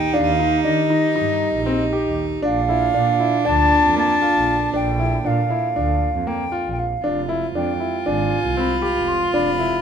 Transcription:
Already playing: double bass D#2, woodwind section D#3 A#3 G4, cello D#4, flute G5
0.14 double bass D#2, woodwind section C4, grand piano D4, flute F5
0.39 grand piano D#4
0.64 double bass D#3, grand piano D4, flute D#5
0.90 grand piano D#4
1.16 double bass G2, grand piano D#4
1.55 double bass A#1
1.66 grand piano C4
1.93 grand piano G4
2.06 double bass D#2
2.42 double bass A#1, woodwind section D3 A#3 F4, grand piano D4, cello D4, flute F5
2.69 grand piano E4
2.94 double bass A#2, grand piano D4
3.20 grand piano E4
3.45 double bass D2, grand piano D4, flute A5
3.86 double bass F2
3.96 grand piano A#3, flute A5
4.22 grand piano F4
4.36 double bass A#1
4.74 double bass A#1, grand piano D4, woodwind section F4, flute G5
4.99 grand piano E4
5.25 double bass A#2, grand piano D4, flute F5
5.50 grand piano E4
5.76 double bass D2, grand piano D4
6.15 double bass F2
6.27 grand piano A#3, flute G5
6.52 grand piano F4
6.66 double bass A#1
6.72 flute G5
6.79 flute F5
7.02 double bass F1, woodwind section C3 G#3 F4, grand piano D4, cello F4
7.29 grand piano E4
7.55 double bass F2, grand piano D4, flute G5
7.80 grand piano E4
8.06 double bass G#1, grand piano D4, flute G#5
8.44 double bass C2
8.57 grand piano C4, flute B5
8.82 grand piano G4
8.96 double bass F1
9.08 flute C6
9.34 double bass F1, grand piano D4, flute B5
9.59 grand piano E4

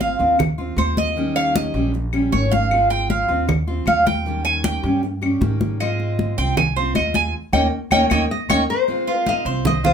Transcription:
Already playing: upright bass G#1, steel-string acoustic guitar G#3 C4 F4
0.01 cuban tres F5, high conga
0.19 upright bass D#2, steel-string acoustic guitar C4 F4, high conga
0.38 muted steel-string acoustic guitar stroke, high conga, low conga, claves
0.58 steel-string acoustic guitar C4 F4, high conga
0.76 upright bass D#2, steel-string acoustic guitar G#3 C4, cuban tres C5, high conga, claves
0.97 cuban tres D#5, high conga
1.16 steel-string acoustic guitar D#3 G3 C#4 G4, high conga
1.36 cuban tres F5, high conga, claves
1.56 cuban tres D#5, high conga
1.74 upright bass A#1, steel-string acoustic guitar G3 C#4 G4
1.94 muted steel-string acoustic guitar stroke, high conga
2.13 steel-string acoustic guitar G3 C#4 G4, high conga, claves
2.32 upright bass G#1, steel-string acoustic guitar D#3 G3 C#4 G4, cuban tres C#5, high conga
2.51 cuban tres F5, high conga
2.71 steel-string acoustic guitar G#3 C4 F4, high conga, claves
2.90 cuban tres G5, high conga
3.10 cuban tres F5, high conga
3.28 upright bass D#2, steel-string acoustic guitar C4 F4, high conga
3.48 muted steel-string acoustic guitar stroke, high conga, low conga, claves
3.67 steel-string acoustic guitar C4 F4, high conga
3.86 upright bass D#2, steel-string acoustic guitar G#3 C4, cuban tres F5, high conga, claves
4.07 cuban tres G5, high conga
4.25 steel-string acoustic guitar D#3 G3 C#4 G4, high conga
4.45 cuban tres G#5, high conga, claves
4.64 cuban tres G5, high conga
4.83 upright bass G2, steel-string acoustic guitar G3 C#4 G4
5.03 muted steel-string acoustic guitar stroke, high conga
5.21 steel-string acoustic guitar G3 C#4 G4, high conga, claves
5.41 upright bass G#2, steel-string acoustic guitar D#3 G3 C#4 G4, high conga
5.61 high conga
5.80 steel-string acoustic guitar G#3 C4 F4, cuban tres D#5, high conga, claves
6.00 high conga
6.19 high conga
6.38 upright bass C2, steel-string acoustic guitar C4 F4, cuban tres G5, high conga
6.57 cuban tres G#5, muted steel-string acoustic guitar stroke, high conga, low conga, claves
6.76 steel-string acoustic guitar C4 F4, cuban tres C5, high conga
6.95 upright bass D#2, steel-string acoustic guitar G#3 C4 F4, cuban tres D#5, high conga, claves
7.14 cuban tres G#5, high conga
7.53 upright bass D#2, steel-string acoustic guitar A#3 C#4 D#4, cuban tres C#5 D#5 G5, high conga, claves
7.91 upright bass D#2, steel-string acoustic guitar A#3 C#4 D#4, cuban tres C#5 D#5 G5, high conga, claves
8.10 upright bass D#2, steel-string acoustic guitar A#3 C#4 D#4, cuban tres C#5 D#5 G5, high conga, claves
8.31 nylon-string guitar D#5
8.49 upright bass D#2, steel-string acoustic guitar A#3 C#4 D#4, cuban tres C#5 D#5 G5, nylon-string guitar C#5, high conga, claves
8.70 nylon-string guitar C5
8.88 steel-string acoustic guitar G#3 C4 F4, high conga
9.07 cuban tres F4, high conga
9.16 nylon-string guitar A#4
9.26 cuban tres D#4, nylon-string guitar F5, high conga
9.45 upright bass C2, steel-string acoustic guitar C4 F4, cuban tres C5, high conga
9.65 nylon-string guitar D#5, muted steel-string acoustic guitar stroke, high conga, low conga
9.84 steel-string acoustic guitar C4 F4, cuban tres F4, nylon-string guitar C5, high conga, low conga

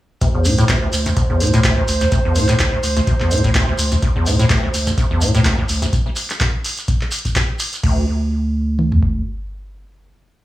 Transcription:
0.21 acid bass D2, analog synth pad C5, kick, closed hi-hat, shekere
0.35 acid bass E2
0.45 sub bass D2, acid bass A2, open hi-hat, shekere
0.58 acid bass A2, closed hi-hat, shekere
0.69 acid bass D2, kick, clap, closed hi-hat, shekere
0.82 acid bass D2
0.93 sub bass D2, open hi-hat, shekere
1.06 acid bass D2, closed hi-hat, shekere
1.17 acid bass D2, kick, closed hi-hat, shekere
1.30 acid bass E2
1.40 sub bass D2, acid bass A2, open hi-hat, shekere
1.47 closed hi-hat
1.53 sub bass D2, acid bass A2, closed hi-hat, shekere
1.64 acid bass D2, kick, clap, closed hi-hat, shekere
1.77 acid bass D2, kick
1.88 sub bass D2, open hi-hat, shekere
2.01 acid bass D2, closed hi-hat, shekere
2.12 acid bass D2, kick, closed hi-hat, shekere
2.25 acid bass E2
2.35 sub bass D2, acid bass A2, open hi-hat, shekere
2.49 acid bass A2, clap, closed hi-hat, shekere
2.59 acid bass D2, kick, clap, closed hi-hat, shekere
2.73 acid bass D2
2.83 sub bass D2, open hi-hat, shekere
2.96 acid bass D2, closed hi-hat, shekere
3.07 acid bass D2, kick, closed hi-hat, shekere
3.20 acid bass E2, clap
3.31 sub bass D2, acid bass A2, open hi-hat, shekere
3.38 closed hi-hat
3.44 sub bass D2, acid bass A2, kick, closed hi-hat, shekere
3.55 acid bass D2, kick, clap, closed hi-hat, shekere
3.68 acid bass D2
3.78 sub bass D2, open hi-hat, shekere
3.91 acid bass D2, closed hi-hat, shekere
4.02 acid bass D2, kick, closed hi-hat, shekere
4.16 acid bass E2
4.26 sub bass D2, acid bass A2, open hi-hat, shekere
4.39 acid bass A2, closed hi-hat, shekere
4.50 acid bass D2, kick, clap, closed hi-hat, shekere
4.63 acid bass D2
4.74 sub bass D2, open hi-hat, shekere
4.87 acid bass D2, closed hi-hat, shekere
4.98 acid bass D2, kick, closed hi-hat, shekere
5.11 acid bass E2
5.21 sub bass D2, acid bass A2, open hi-hat, shekere
5.28 closed hi-hat
5.34 sub bass D2, acid bass A2, closed hi-hat, shekere
5.45 acid bass D2, kick, clap, closed hi-hat, shekere
5.58 acid bass D2, kick
5.69 sub bass D2, open hi-hat, shekere
5.82 acid bass D2, closed hi-hat, shekere
5.93 kick, closed hi-hat, shekere
6.16 open hi-hat, shekere
6.30 clap, closed hi-hat, shekere
6.40 kick, clap, closed hi-hat, shekere
6.64 open hi-hat, shekere
6.78 closed hi-hat, shekere
6.88 kick, closed hi-hat, shekere
7.01 clap
7.11 open hi-hat, shekere
7.19 closed hi-hat
7.25 kick, closed hi-hat, shekere
7.35 kick, clap, closed hi-hat, shekere
7.59 open hi-hat, shekere
7.73 closed hi-hat, shekere
7.83 acid bass D2, sub bass D2, kick, crash
8.79 mid tom
8.92 floor tom
9.03 kick

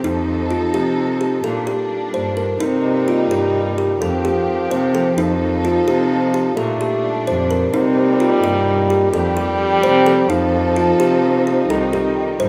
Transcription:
Already playing: string section F3
0.04 cello F2, kalimba D#4, string section D#4 A4
0.51 kalimba F4
0.74 cello C3, kalimba G4
1.21 kalimba G4
1.44 cello A#2, string section G3 A#3 D4, kalimba A4
1.67 kalimba G4
2.14 cello G2, kalimba C5
2.37 kalimba A#4
2.60 string section C3 A#3 D#4, cello C3, french horn G3, kalimba D#4
3.08 kalimba F4
3.31 cello G2, kalimba G4
3.78 kalimba G4
4.00 cello F2, french horn F3, string section F3 C4 G4, kalimba A4
4.25 kalimba G4
4.71 cello C3, kalimba C5
4.95 kalimba A4
5.17 cello F2, french horn F3, kalimba D#4, string section D#4 A4
5.65 kalimba F4
5.87 cello C3, kalimba G4
6.34 kalimba G4
6.56 cello A#2, string section A#2 G3 D4, french horn A3, kalimba A4
6.81 kalimba G4
7.27 cello F2, kalimba C5
7.51 kalimba A#4
7.73 cello C3, string section C3 A#3 D#4, french horn G3, kalimba D#4
8.20 kalimba F4
8.44 cello G2, kalimba G4
8.90 kalimba G4
9.13 cello F2, string section F3 C4 G4, french horn G3, kalimba A4
9.37 kalimba G4
9.83 cello C3, kalimba C5
10.06 kalimba A4
10.29 cello F2, french horn F3, kalimba D#4, string section D#4 A4
10.76 kalimba F4
10.99 cello C3, kalimba G4
11.47 kalimba G4
11.70 cello C2, string section C3 G3, french horn D#3, kalimba A4
11.93 kalimba G4
12.40 cello G2, kalimba C5

